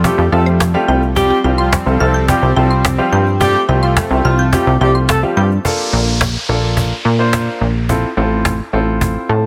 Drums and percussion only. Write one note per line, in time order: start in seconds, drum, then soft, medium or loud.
0.04 cajon bass loud
0.32 cajon slap soft
0.47 cajon slap medium
0.60 cajon bass loud
0.60 cajon slap loud
0.74 cajon slap soft
0.88 cajon slap soft
1.02 cajon slap soft
1.16 cajon bass loud
1.44 cajon slap soft
1.59 cajon slap soft
1.73 cajon bass loud
1.73 cajon slap loud
1.87 cajon slap soft
2.15 cajon slap soft
2.28 cajon bass loud
2.56 cajon slap soft
2.71 cajon slap soft
2.85 cajon bass loud
2.85 cajon slap loud
2.99 cajon slap soft
3.13 cajon slap soft
3.27 cajon slap soft
3.41 cajon bass loud
3.55 cajon slap soft
3.69 cajon slap soft
3.83 cajon slap soft
3.97 cajon bass loud
3.97 cajon slap loud
4.11 cajon slap soft
4.25 cajon slap soft
4.39 cajon slap soft
4.53 cajon bass loud
4.81 cajon slap soft
4.95 cajon slap medium
5.09 cajon bass loud
5.09 cajon slap loud
5.23 cajon slap soft
5.37 cajon slap soft
5.51 cajon slap soft
5.65 cajon bass loud
6.21 cajon bass loud
6.21 cajon slap loud
6.77 cajon bass loud
7.33 cajon bass loud
7.33 cajon slap loud
7.89 cajon bass loud
8.45 cajon bass loud
8.45 cajon slap loud
9.01 cajon bass loud